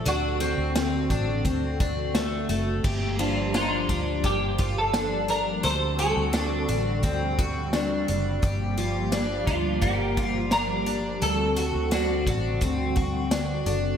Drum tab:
CC |--------|x-------|--------|--------|
HH |xxxxxxxx|-xxxxxxx|xxxxxxxx|xxxxxxxx|
TB |--x---x-|--x---x-|--x---x-|--x---x-|
SD |--o---o-|--o---o-|--o---o-|--o---o-|
BD |---ooo--|o--ooo--|----oo--|o--ooo--|

CC |--------|
HH |xxxxxxxx|
TB |--x---x-|
SD |--o---o-|
BD |---ooo--|